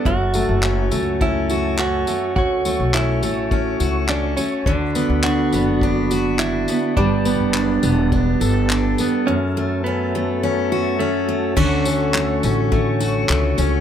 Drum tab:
CC |--------|--------|--------|--------|
TB |-x-x-x-x|-x-x-x-x|-x-x-x-x|-x-x-x-x|
CP |--x---x-|--x---x-|--x---x-|--x---x-|
BD |o---o---|o---o---|o---o---|o---o---|

CC |--------|x-------|
TB |--------|-x-x-x-x|
CP |--------|--x---x-|
BD |--------|o---o---|